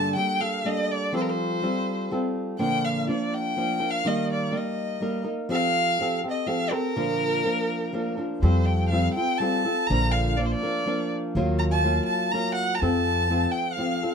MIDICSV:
0, 0, Header, 1, 4, 480
1, 0, Start_track
1, 0, Key_signature, -2, "major"
1, 0, Tempo, 486224
1, 1124, Time_signature, 3, 2, 24, 8
1, 13963, End_track
2, 0, Start_track
2, 0, Title_t, "Violin"
2, 0, Program_c, 0, 40
2, 0, Note_on_c, 0, 81, 86
2, 150, Note_off_c, 0, 81, 0
2, 158, Note_on_c, 0, 79, 91
2, 409, Note_on_c, 0, 77, 75
2, 424, Note_off_c, 0, 79, 0
2, 656, Note_on_c, 0, 75, 79
2, 671, Note_off_c, 0, 77, 0
2, 903, Note_on_c, 0, 74, 80
2, 918, Note_off_c, 0, 75, 0
2, 1133, Note_off_c, 0, 74, 0
2, 1149, Note_on_c, 0, 72, 62
2, 1203, Note_on_c, 0, 70, 60
2, 1218, Note_off_c, 0, 72, 0
2, 1278, Note_on_c, 0, 72, 62
2, 1293, Note_off_c, 0, 70, 0
2, 2095, Note_off_c, 0, 72, 0
2, 2561, Note_on_c, 0, 79, 84
2, 2812, Note_on_c, 0, 77, 66
2, 2827, Note_off_c, 0, 79, 0
2, 3053, Note_off_c, 0, 77, 0
2, 3062, Note_on_c, 0, 74, 61
2, 3300, Note_on_c, 0, 79, 80
2, 3315, Note_off_c, 0, 74, 0
2, 3858, Note_on_c, 0, 77, 92
2, 3873, Note_off_c, 0, 79, 0
2, 4021, Note_on_c, 0, 75, 85
2, 4036, Note_off_c, 0, 77, 0
2, 4251, Note_off_c, 0, 75, 0
2, 4275, Note_on_c, 0, 74, 67
2, 4514, Note_on_c, 0, 75, 59
2, 4529, Note_off_c, 0, 74, 0
2, 5209, Note_off_c, 0, 75, 0
2, 5444, Note_on_c, 0, 77, 111
2, 6116, Note_off_c, 0, 77, 0
2, 6230, Note_on_c, 0, 75, 77
2, 6393, Note_on_c, 0, 77, 80
2, 6408, Note_off_c, 0, 75, 0
2, 6636, Note_on_c, 0, 70, 105
2, 6651, Note_off_c, 0, 77, 0
2, 8079, Note_off_c, 0, 70, 0
2, 8318, Note_on_c, 0, 72, 59
2, 8548, Note_on_c, 0, 79, 68
2, 8563, Note_off_c, 0, 72, 0
2, 8774, Note_off_c, 0, 79, 0
2, 8780, Note_on_c, 0, 77, 68
2, 9016, Note_off_c, 0, 77, 0
2, 9031, Note_on_c, 0, 79, 85
2, 9263, Note_on_c, 0, 81, 88
2, 9278, Note_off_c, 0, 79, 0
2, 9740, Note_on_c, 0, 82, 102
2, 9755, Note_off_c, 0, 81, 0
2, 9988, Note_on_c, 0, 77, 80
2, 10003, Note_off_c, 0, 82, 0
2, 10237, Note_on_c, 0, 74, 55
2, 10252, Note_off_c, 0, 77, 0
2, 10323, Note_on_c, 0, 72, 51
2, 10338, Note_off_c, 0, 74, 0
2, 10387, Note_on_c, 0, 74, 82
2, 10402, Note_off_c, 0, 72, 0
2, 10965, Note_off_c, 0, 74, 0
2, 11443, Note_on_c, 0, 82, 80
2, 11497, Note_off_c, 0, 82, 0
2, 11562, Note_on_c, 0, 81, 106
2, 11898, Note_off_c, 0, 81, 0
2, 11904, Note_on_c, 0, 81, 88
2, 12162, Note_on_c, 0, 82, 99
2, 12177, Note_off_c, 0, 81, 0
2, 12383, Note_off_c, 0, 82, 0
2, 12389, Note_on_c, 0, 78, 97
2, 12586, Note_on_c, 0, 82, 74
2, 12601, Note_off_c, 0, 78, 0
2, 12639, Note_on_c, 0, 81, 96
2, 12654, Note_off_c, 0, 82, 0
2, 13341, Note_on_c, 0, 79, 76
2, 13356, Note_off_c, 0, 81, 0
2, 13565, Note_on_c, 0, 77, 77
2, 13580, Note_off_c, 0, 79, 0
2, 13954, Note_off_c, 0, 77, 0
2, 13963, End_track
3, 0, Start_track
3, 0, Title_t, "Nylon-string guitar"
3, 0, Program_c, 1, 24
3, 0, Note_on_c, 1, 43, 68
3, 0, Note_on_c, 1, 50, 75
3, 0, Note_on_c, 1, 55, 72
3, 0, Note_on_c, 1, 58, 68
3, 0, Note_on_c, 1, 62, 74
3, 0, Note_on_c, 1, 69, 74
3, 153, Note_off_c, 1, 58, 0
3, 157, Note_off_c, 1, 55, 0
3, 160, Note_off_c, 1, 43, 0
3, 161, Note_off_c, 1, 62, 0
3, 161, Note_on_c, 1, 55, 56
3, 163, Note_off_c, 1, 50, 0
3, 165, Note_on_c, 1, 58, 55
3, 168, Note_off_c, 1, 69, 0
3, 172, Note_on_c, 1, 69, 57
3, 173, Note_on_c, 1, 62, 60
3, 385, Note_off_c, 1, 69, 0
3, 392, Note_off_c, 1, 62, 0
3, 397, Note_on_c, 1, 69, 44
3, 401, Note_off_c, 1, 58, 0
3, 403, Note_off_c, 1, 55, 0
3, 403, Note_on_c, 1, 62, 35
3, 413, Note_on_c, 1, 58, 41
3, 420, Note_on_c, 1, 55, 36
3, 623, Note_off_c, 1, 55, 0
3, 626, Note_off_c, 1, 58, 0
3, 631, Note_off_c, 1, 62, 0
3, 635, Note_on_c, 1, 55, 49
3, 638, Note_on_c, 1, 58, 48
3, 640, Note_off_c, 1, 69, 0
3, 643, Note_on_c, 1, 62, 57
3, 652, Note_on_c, 1, 69, 64
3, 1103, Note_off_c, 1, 55, 0
3, 1110, Note_on_c, 1, 53, 67
3, 1111, Note_off_c, 1, 58, 0
3, 1112, Note_off_c, 1, 69, 0
3, 1115, Note_on_c, 1, 55, 59
3, 1115, Note_on_c, 1, 60, 74
3, 1116, Note_off_c, 1, 62, 0
3, 1120, Note_on_c, 1, 65, 71
3, 1124, Note_on_c, 1, 69, 73
3, 1588, Note_off_c, 1, 55, 0
3, 1593, Note_off_c, 1, 60, 0
3, 1600, Note_on_c, 1, 55, 54
3, 1603, Note_off_c, 1, 69, 0
3, 1604, Note_on_c, 1, 60, 48
3, 1606, Note_off_c, 1, 65, 0
3, 1610, Note_on_c, 1, 65, 62
3, 1614, Note_on_c, 1, 69, 58
3, 1629, Note_off_c, 1, 53, 0
3, 2069, Note_off_c, 1, 55, 0
3, 2074, Note_off_c, 1, 60, 0
3, 2081, Note_off_c, 1, 65, 0
3, 2081, Note_on_c, 1, 55, 54
3, 2082, Note_off_c, 1, 69, 0
3, 2086, Note_on_c, 1, 60, 63
3, 2093, Note_on_c, 1, 65, 57
3, 2094, Note_on_c, 1, 69, 64
3, 2553, Note_off_c, 1, 55, 0
3, 2556, Note_on_c, 1, 53, 73
3, 2558, Note_on_c, 1, 46, 72
3, 2558, Note_on_c, 1, 50, 66
3, 2559, Note_off_c, 1, 60, 0
3, 2563, Note_off_c, 1, 69, 0
3, 2563, Note_on_c, 1, 58, 76
3, 2565, Note_off_c, 1, 65, 0
3, 2567, Note_on_c, 1, 70, 75
3, 2569, Note_on_c, 1, 62, 75
3, 3030, Note_off_c, 1, 53, 0
3, 3040, Note_off_c, 1, 62, 0
3, 3042, Note_on_c, 1, 53, 41
3, 3046, Note_off_c, 1, 46, 0
3, 3046, Note_off_c, 1, 50, 0
3, 3046, Note_off_c, 1, 58, 0
3, 3050, Note_on_c, 1, 58, 64
3, 3052, Note_on_c, 1, 62, 61
3, 3062, Note_off_c, 1, 70, 0
3, 3066, Note_on_c, 1, 70, 52
3, 3508, Note_off_c, 1, 53, 0
3, 3514, Note_off_c, 1, 58, 0
3, 3519, Note_off_c, 1, 62, 0
3, 3520, Note_on_c, 1, 53, 57
3, 3526, Note_off_c, 1, 70, 0
3, 3526, Note_on_c, 1, 58, 49
3, 3531, Note_on_c, 1, 62, 56
3, 3538, Note_on_c, 1, 70, 54
3, 3739, Note_off_c, 1, 70, 0
3, 3742, Note_off_c, 1, 62, 0
3, 3745, Note_off_c, 1, 58, 0
3, 3751, Note_on_c, 1, 70, 39
3, 3753, Note_off_c, 1, 53, 0
3, 3754, Note_on_c, 1, 62, 36
3, 3757, Note_on_c, 1, 58, 31
3, 3765, Note_on_c, 1, 53, 37
3, 3984, Note_off_c, 1, 58, 0
3, 3992, Note_off_c, 1, 70, 0
3, 3993, Note_off_c, 1, 53, 0
3, 3996, Note_on_c, 1, 55, 64
3, 3996, Note_on_c, 1, 58, 81
3, 3998, Note_off_c, 1, 62, 0
3, 3999, Note_on_c, 1, 51, 81
3, 4002, Note_on_c, 1, 63, 78
3, 4004, Note_on_c, 1, 70, 77
3, 4450, Note_off_c, 1, 58, 0
3, 4451, Note_off_c, 1, 55, 0
3, 4455, Note_off_c, 1, 70, 0
3, 4455, Note_on_c, 1, 55, 55
3, 4459, Note_off_c, 1, 63, 0
3, 4462, Note_on_c, 1, 58, 57
3, 4467, Note_on_c, 1, 70, 62
3, 4471, Note_on_c, 1, 63, 61
3, 4476, Note_off_c, 1, 51, 0
3, 4928, Note_off_c, 1, 55, 0
3, 4939, Note_on_c, 1, 55, 52
3, 4940, Note_off_c, 1, 58, 0
3, 4940, Note_off_c, 1, 63, 0
3, 4948, Note_off_c, 1, 70, 0
3, 4951, Note_on_c, 1, 58, 55
3, 4951, Note_on_c, 1, 63, 47
3, 4958, Note_on_c, 1, 70, 60
3, 5165, Note_off_c, 1, 70, 0
3, 5171, Note_off_c, 1, 63, 0
3, 5177, Note_on_c, 1, 70, 41
3, 5178, Note_off_c, 1, 58, 0
3, 5183, Note_on_c, 1, 63, 42
3, 5185, Note_off_c, 1, 55, 0
3, 5190, Note_on_c, 1, 58, 38
3, 5419, Note_on_c, 1, 53, 89
3, 5422, Note_off_c, 1, 70, 0
3, 5425, Note_off_c, 1, 63, 0
3, 5426, Note_off_c, 1, 58, 0
3, 5430, Note_on_c, 1, 60, 86
3, 5431, Note_on_c, 1, 67, 73
3, 5442, Note_on_c, 1, 69, 73
3, 5908, Note_off_c, 1, 60, 0
3, 5909, Note_off_c, 1, 67, 0
3, 5914, Note_off_c, 1, 53, 0
3, 5914, Note_off_c, 1, 69, 0
3, 5918, Note_on_c, 1, 53, 54
3, 5929, Note_on_c, 1, 67, 73
3, 5931, Note_on_c, 1, 60, 50
3, 5939, Note_on_c, 1, 69, 63
3, 6139, Note_off_c, 1, 69, 0
3, 6147, Note_off_c, 1, 67, 0
3, 6151, Note_on_c, 1, 69, 38
3, 6153, Note_off_c, 1, 53, 0
3, 6158, Note_on_c, 1, 67, 42
3, 6160, Note_off_c, 1, 60, 0
3, 6170, Note_on_c, 1, 60, 39
3, 6372, Note_off_c, 1, 60, 0
3, 6378, Note_off_c, 1, 67, 0
3, 6381, Note_on_c, 1, 53, 54
3, 6384, Note_on_c, 1, 60, 56
3, 6387, Note_off_c, 1, 69, 0
3, 6390, Note_on_c, 1, 67, 52
3, 6399, Note_on_c, 1, 69, 59
3, 6612, Note_off_c, 1, 69, 0
3, 6624, Note_on_c, 1, 69, 46
3, 6625, Note_off_c, 1, 53, 0
3, 6626, Note_off_c, 1, 67, 0
3, 6627, Note_off_c, 1, 60, 0
3, 6638, Note_on_c, 1, 67, 33
3, 6639, Note_on_c, 1, 60, 38
3, 6866, Note_off_c, 1, 69, 0
3, 6870, Note_off_c, 1, 60, 0
3, 6871, Note_on_c, 1, 46, 62
3, 6872, Note_off_c, 1, 67, 0
3, 6874, Note_on_c, 1, 50, 68
3, 6874, Note_on_c, 1, 58, 84
3, 6875, Note_on_c, 1, 53, 63
3, 6876, Note_on_c, 1, 62, 75
3, 6882, Note_on_c, 1, 70, 65
3, 7342, Note_off_c, 1, 58, 0
3, 7345, Note_off_c, 1, 53, 0
3, 7349, Note_on_c, 1, 53, 57
3, 7350, Note_off_c, 1, 46, 0
3, 7351, Note_off_c, 1, 62, 0
3, 7351, Note_off_c, 1, 70, 0
3, 7352, Note_off_c, 1, 50, 0
3, 7354, Note_on_c, 1, 58, 59
3, 7363, Note_on_c, 1, 62, 64
3, 7363, Note_on_c, 1, 70, 66
3, 7817, Note_off_c, 1, 58, 0
3, 7819, Note_off_c, 1, 53, 0
3, 7823, Note_on_c, 1, 53, 59
3, 7825, Note_off_c, 1, 62, 0
3, 7829, Note_off_c, 1, 70, 0
3, 7829, Note_on_c, 1, 58, 58
3, 7837, Note_on_c, 1, 62, 65
3, 7841, Note_on_c, 1, 70, 58
3, 8052, Note_off_c, 1, 70, 0
3, 8060, Note_off_c, 1, 62, 0
3, 8064, Note_off_c, 1, 58, 0
3, 8064, Note_on_c, 1, 70, 38
3, 8070, Note_off_c, 1, 53, 0
3, 8072, Note_on_c, 1, 62, 40
3, 8076, Note_on_c, 1, 58, 36
3, 8084, Note_on_c, 1, 53, 39
3, 8300, Note_off_c, 1, 53, 0
3, 8311, Note_off_c, 1, 70, 0
3, 8312, Note_on_c, 1, 53, 57
3, 8315, Note_off_c, 1, 62, 0
3, 8317, Note_off_c, 1, 58, 0
3, 8318, Note_on_c, 1, 55, 75
3, 8325, Note_on_c, 1, 65, 73
3, 8326, Note_on_c, 1, 60, 72
3, 8327, Note_on_c, 1, 69, 74
3, 8786, Note_off_c, 1, 55, 0
3, 8795, Note_off_c, 1, 60, 0
3, 8798, Note_on_c, 1, 55, 50
3, 8802, Note_off_c, 1, 65, 0
3, 8803, Note_off_c, 1, 69, 0
3, 8806, Note_on_c, 1, 65, 54
3, 8807, Note_on_c, 1, 60, 52
3, 8815, Note_on_c, 1, 69, 58
3, 8827, Note_off_c, 1, 53, 0
3, 9030, Note_off_c, 1, 69, 0
3, 9035, Note_off_c, 1, 65, 0
3, 9042, Note_on_c, 1, 69, 38
3, 9043, Note_off_c, 1, 55, 0
3, 9047, Note_off_c, 1, 60, 0
3, 9047, Note_on_c, 1, 65, 42
3, 9060, Note_on_c, 1, 60, 30
3, 9274, Note_off_c, 1, 65, 0
3, 9278, Note_on_c, 1, 55, 57
3, 9279, Note_off_c, 1, 60, 0
3, 9282, Note_off_c, 1, 69, 0
3, 9286, Note_on_c, 1, 65, 55
3, 9291, Note_on_c, 1, 60, 55
3, 9294, Note_on_c, 1, 69, 64
3, 9512, Note_off_c, 1, 69, 0
3, 9517, Note_off_c, 1, 65, 0
3, 9524, Note_off_c, 1, 55, 0
3, 9524, Note_on_c, 1, 69, 48
3, 9529, Note_on_c, 1, 65, 30
3, 9531, Note_off_c, 1, 60, 0
3, 9541, Note_on_c, 1, 60, 35
3, 9767, Note_off_c, 1, 69, 0
3, 9770, Note_off_c, 1, 60, 0
3, 9770, Note_off_c, 1, 65, 0
3, 9771, Note_on_c, 1, 46, 68
3, 9772, Note_on_c, 1, 50, 70
3, 9774, Note_on_c, 1, 53, 84
3, 9774, Note_on_c, 1, 58, 69
3, 9776, Note_on_c, 1, 62, 84
3, 9781, Note_on_c, 1, 70, 76
3, 10237, Note_off_c, 1, 53, 0
3, 10237, Note_off_c, 1, 62, 0
3, 10241, Note_on_c, 1, 53, 52
3, 10242, Note_off_c, 1, 58, 0
3, 10246, Note_on_c, 1, 58, 67
3, 10249, Note_on_c, 1, 62, 54
3, 10251, Note_off_c, 1, 46, 0
3, 10252, Note_off_c, 1, 50, 0
3, 10258, Note_off_c, 1, 70, 0
3, 10262, Note_on_c, 1, 70, 58
3, 10481, Note_off_c, 1, 70, 0
3, 10485, Note_off_c, 1, 53, 0
3, 10488, Note_off_c, 1, 58, 0
3, 10489, Note_off_c, 1, 62, 0
3, 10493, Note_on_c, 1, 70, 51
3, 10500, Note_on_c, 1, 62, 33
3, 10502, Note_on_c, 1, 58, 39
3, 10509, Note_on_c, 1, 53, 34
3, 10706, Note_off_c, 1, 53, 0
3, 10718, Note_on_c, 1, 53, 50
3, 10719, Note_off_c, 1, 58, 0
3, 10720, Note_off_c, 1, 62, 0
3, 10725, Note_off_c, 1, 70, 0
3, 10730, Note_on_c, 1, 58, 47
3, 10732, Note_on_c, 1, 62, 59
3, 10736, Note_on_c, 1, 70, 67
3, 11206, Note_off_c, 1, 58, 0
3, 11207, Note_off_c, 1, 62, 0
3, 11210, Note_off_c, 1, 70, 0
3, 11210, Note_on_c, 1, 51, 77
3, 11212, Note_off_c, 1, 53, 0
3, 11216, Note_on_c, 1, 54, 78
3, 11218, Note_on_c, 1, 58, 94
3, 11222, Note_on_c, 1, 65, 92
3, 11225, Note_on_c, 1, 70, 75
3, 11669, Note_off_c, 1, 54, 0
3, 11678, Note_off_c, 1, 58, 0
3, 11681, Note_on_c, 1, 54, 59
3, 11682, Note_off_c, 1, 70, 0
3, 11688, Note_off_c, 1, 51, 0
3, 11689, Note_off_c, 1, 65, 0
3, 11690, Note_on_c, 1, 58, 60
3, 11693, Note_on_c, 1, 65, 69
3, 11694, Note_on_c, 1, 70, 73
3, 12160, Note_off_c, 1, 54, 0
3, 12163, Note_off_c, 1, 58, 0
3, 12169, Note_off_c, 1, 70, 0
3, 12172, Note_on_c, 1, 54, 54
3, 12175, Note_off_c, 1, 65, 0
3, 12175, Note_on_c, 1, 58, 66
3, 12179, Note_on_c, 1, 65, 63
3, 12186, Note_on_c, 1, 70, 69
3, 12646, Note_off_c, 1, 54, 0
3, 12647, Note_off_c, 1, 58, 0
3, 12650, Note_on_c, 1, 53, 64
3, 12653, Note_off_c, 1, 70, 0
3, 12655, Note_on_c, 1, 60, 71
3, 12656, Note_off_c, 1, 65, 0
3, 12660, Note_on_c, 1, 65, 78
3, 12662, Note_on_c, 1, 69, 88
3, 13109, Note_off_c, 1, 53, 0
3, 13120, Note_off_c, 1, 60, 0
3, 13121, Note_on_c, 1, 53, 58
3, 13123, Note_off_c, 1, 65, 0
3, 13129, Note_off_c, 1, 69, 0
3, 13132, Note_on_c, 1, 60, 61
3, 13135, Note_on_c, 1, 65, 58
3, 13140, Note_on_c, 1, 69, 51
3, 13588, Note_off_c, 1, 53, 0
3, 13598, Note_off_c, 1, 60, 0
3, 13599, Note_off_c, 1, 65, 0
3, 13599, Note_on_c, 1, 53, 54
3, 13608, Note_off_c, 1, 69, 0
3, 13610, Note_on_c, 1, 60, 53
3, 13611, Note_on_c, 1, 65, 50
3, 13620, Note_on_c, 1, 69, 44
3, 13837, Note_off_c, 1, 69, 0
3, 13847, Note_off_c, 1, 65, 0
3, 13848, Note_on_c, 1, 69, 39
3, 13849, Note_off_c, 1, 53, 0
3, 13849, Note_off_c, 1, 60, 0
3, 13859, Note_on_c, 1, 65, 33
3, 13861, Note_on_c, 1, 60, 33
3, 13963, Note_off_c, 1, 60, 0
3, 13963, Note_off_c, 1, 65, 0
3, 13963, Note_off_c, 1, 69, 0
3, 13963, End_track
4, 0, Start_track
4, 0, Title_t, "Upright bass"
4, 0, Program_c, 2, 32
4, 8320, Note_on_c, 2, 41, 98
4, 8949, Note_off_c, 2, 41, 0
4, 9773, Note_on_c, 2, 34, 79
4, 10395, Note_off_c, 2, 34, 0
4, 11205, Note_on_c, 2, 39, 80
4, 11829, Note_off_c, 2, 39, 0
4, 12653, Note_on_c, 2, 41, 77
4, 13277, Note_off_c, 2, 41, 0
4, 13963, End_track
0, 0, End_of_file